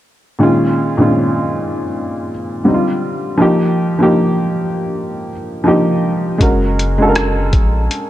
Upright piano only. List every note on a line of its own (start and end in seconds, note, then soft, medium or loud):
0.39 0.92 A#2 medium
0.39 0.92 D#3 medium
0.39 0.93 G#3 medium
0.39 0.93 C#4 medium
0.43 0.94 F4 medium
0.97 2.28 A#2 medium
0.97 2.29 D#3 medium
0.97 2.29 G#3 medium
0.97 1.06 C4 medium
1.02 2.30 F4 medium
1.07 2.33 C#4 medium
2.64 3.33 D3 medium
2.64 3.33 G3 medium
2.64 3.34 C4 medium
2.68 2.74 D#4 medium
2.74 3.38 F4 medium
3.38 3.91 F3 medium
3.38 3.92 A#3 medium
3.38 3.93 D#4 medium
3.42 3.93 G4 medium
3.99 5.29 F3 medium
3.99 5.29 A#3 medium
3.99 5.30 D#4 medium
3.99 5.31 G4 medium
5.64 6.33 F3 medium
5.64 6.33 A#3 medium
5.64 6.34 D#4 medium
5.64 6.35 G4 medium
6.38 6.92 G#3 medium
6.38 6.92 C#4 medium
6.38 6.93 F#4 medium
6.42 6.94 A#4 medium
6.98 8.10 G#3 medium
6.98 8.10 C#4 medium
6.98 8.10 F#4 medium
7.02 7.07 A4 medium
7.09 8.10 A#4 medium